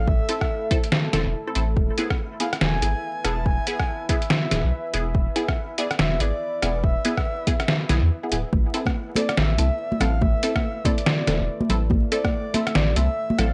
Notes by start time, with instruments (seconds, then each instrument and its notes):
Already playing: ambient pad A3 E4 A4
0.08 sub bass A1, soft synth lead E5, kick
0.29 synth stab C4 E4 A4, closed hi-hat
0.41 kick, cross-stick
0.71 synth stab C4 E4 A4, kick, closed hi-hat
0.84 closed hi-hat
0.92 snare
1.13 sub bass E1, synth stab C4 E4 A4, snare, closed hi-hat
1.26 sub bass E1
1.47 synth stab C4 E4 A4
1.55 sub bass A1, synth stab C4 E4 A4, closed hi-hat
1.77 sub bass E1, ambient pad B4 E5, kick
1.98 synth stab B3 E4 G#4, closed hi-hat
2.10 kick, cross-stick
2.40 synth stab B3 E4 G#4, soft synth lead F5, closed hi-hat
2.53 cross-stick, closed hi-hat
2.61 sub bass E1, soft synth lead G#5, snare
2.82 sub bass G#1, synth stab B3 E4 G#4, closed hi-hat
3.25 sub bass E1, synth stab B3 E4 G#4, soft synth lead A5, cross-stick, closed hi-hat
3.46 sub bass E1, soft synth lead G#5, kick
3.67 synth stab B3 E4 G#4, closed hi-hat
3.79 kick, cross-stick
4.09 synth stab B3 E4 G#4, soft synth lead E5, kick, closed hi-hat
4.22 closed hi-hat
4.30 snare
4.51 sub bass D1, synth stab B3 E4 G#4, snare, closed hi-hat
4.64 sub bass B1
4.94 sub bass E1, synth stab B3 E4 G#4, closed hi-hat
5.15 sub bass E1, kick
5.36 synth stab B3 E4 G#4, closed hi-hat
5.48 kick, cross-stick
5.78 synth stab B3 E4 G#4, soft synth lead D5, closed hi-hat
5.91 cross-stick, closed hi-hat
5.99 sub bass E1, soft synth lead E5, snare
6.20 sub bass G#1, synth stab B3 E4 G#4, soft synth lead D5, closed hi-hat
6.62 sub bass E1, synth stab B3 E4 G#4, soft synth lead D5, cross-stick, closed hi-hat
6.84 sub bass E1, soft synth lead E5, kick
7.05 synth stab B3 E4 G#4, closed hi-hat
7.17 kick, cross-stick
7.47 synth stab B3 E4 G#4, kick, closed hi-hat
7.60 cross-stick, closed hi-hat
7.68 snare
7.89 sub bass B1, synth stab B3 E4 G#4, snare, closed hi-hat
8.02 sub bass E2
8.23 synth stab B3 E4 G#4
8.32 sub bass D1, synth stab B3 E4 G#4, closed hi-hat
8.53 sub bass A1, ambient pad A3 E4, kick, high conga
8.74 synth stab C4 E4 A4, closed hi-hat
8.86 kick, cross-stick, high conga
9.15 synth stab C4 E4 A4, soft synth lead D5, closed hi-hat, high conga
9.29 cross-stick, closed hi-hat
9.37 sub bass A1, soft synth lead E5, snare
9.58 sub bass C2, synth stab C4 E4 A4, closed hi-hat, high conga
9.92 high conga
10.00 sub bass A1, synth stab C4 E4 A4, soft synth lead F5, cross-stick, closed hi-hat, low conga
10.21 sub bass A1, soft synth lead E5, kick, high conga
10.43 synth stab C4 E4 A4, closed hi-hat
10.56 kick, cross-stick, high conga
10.85 synth stab C4 E4 A4, soft synth lead D5, kick, closed hi-hat, high conga
10.98 closed hi-hat
11.06 snare
11.27 sub bass E1, synth stab C4 E4 A4, snare, closed hi-hat, high conga
11.40 sub bass E1
11.61 high conga
11.69 sub bass A1, synth stab C4 E4 A4, closed hi-hat, low conga
11.90 sub bass A1, ambient pad A4, kick, high conga
12.12 synth stab C4 E4 A4, soft synth lead D5, closed hi-hat
12.24 kick, cross-stick, high conga
12.54 synth stab C4 E4 A4, soft synth lead E5, closed hi-hat, high conga
12.67 cross-stick, closed hi-hat
12.75 sub bass A1, soft synth lead D5, snare
12.96 sub bass C2, synth stab C4 E4 A4, soft synth lead E5, closed hi-hat, high conga
13.30 high conga
13.38 sub bass A1, synth stab C4 E4 A4, soft synth lead F5, cross-stick, closed hi-hat, low conga